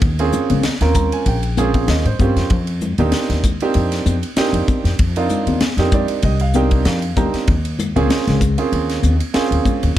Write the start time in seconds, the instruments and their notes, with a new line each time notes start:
0.01 upright bass D#2, kick, ride
0.19 grand piano A#3 C4 C#4 F4 G#4, ride
0.32 hi-hat pedal, low conga
0.50 upright bass C#2, ride, high conga
0.63 snare, ride, high conga
0.81 upright bass D#2, grand piano A#3 C4 C#4 F4 A#4, snare, ride
0.94 grand piano A#5, kick, hi-hat pedal, low conga
1.12 grand piano G#5, ride
1.26 upright bass A#1, grand piano G5, kick, ride
1.43 ride
1.57 grand piano A#3 C4 C#4 F4 G#4, hi-hat pedal, high conga, low conga
1.74 grand piano F5, kick, ride, high conga
1.88 upright bass D#2, grand piano D#5, snare, ride
2.05 upright bass G#2, grand piano C5, ride
2.19 upright bass G2, grand piano A#3 C4 C#4 F4 G4, kick, hi-hat pedal, high conga, low conga
2.36 upright bass F2, snare, ride
2.50 upright bass F2, kick, ride
2.67 ride
2.81 hi-hat pedal, low conga
2.98 upright bass D#2, grand piano A#3 C4 D4 D#4 G4, ride, high conga
3.12 snare, ride, high conga
3.30 upright bass D#2, snare, ride
3.44 kick, hi-hat pedal, low conga
3.60 grand piano A#3 C4 D4 D#4 G4, ride
3.74 upright bass F2, ride
3.92 snare, ride
4.06 upright bass F2, hi-hat pedal, high conga
4.23 ride
4.36 grand piano A#3 C4 D4 D#4 G4, muted upright bass stroke, snare, ride
4.53 upright bass F2, ride
4.68 muted upright bass stroke, kick, hi-hat pedal, high conga, low conga
4.84 upright bass F2, snare, ride
4.99 upright bass F2, kick, ride
5.16 grand piano A#3 C4 D4 D#4 F4, ride
5.29 hi-hat pedal, low conga
5.46 upright bass D#2, ride, high conga
5.61 snare, ride, high conga
5.77 upright bass F2, grand piano A#3 C4 D4 D#4 G4, snare, ride
5.92 grand piano D5, kick, hi-hat pedal, low conga
6.08 ride
6.23 upright bass C2, grand piano D#5, kick, ride
6.40 grand piano F5, ride
6.54 grand piano A#3 C4 D4 D#4 G4 G5, hi-hat pedal, high conga
6.71 kick, ride
6.85 upright bass F2, grand piano F5, snare, ride
7.02 ride
7.17 upright bass D#2, grand piano A#3 C4 D4 D#4 G4 A#5, kick, hi-hat pedal, high conga, low conga
7.34 muted upright bass stroke, snare, ride
7.48 upright bass D#2, kick, ride
7.65 ride
7.79 hi-hat pedal, low conga
7.96 upright bass C#2, grand piano A#3 C4 C#4 F4 G#4, ride, high conga
8.10 snare, ride, high conga
8.27 upright bass C#2, snare, ride
8.41 kick, hi-hat pedal, low conga
8.58 grand piano A#3 C4 C#4 F4 G#4, ride
8.72 upright bass D#2, ride
8.89 snare, ride
9.03 upright bass D#2, hi-hat pedal, high conga
9.20 ride
9.34 grand piano A#3 C4 C#4 F4 G#4, muted upright bass stroke, snare, ride
9.51 upright bass D#2, ride
9.65 kick, hi-hat pedal, high conga, low conga
9.83 upright bass D#2, ride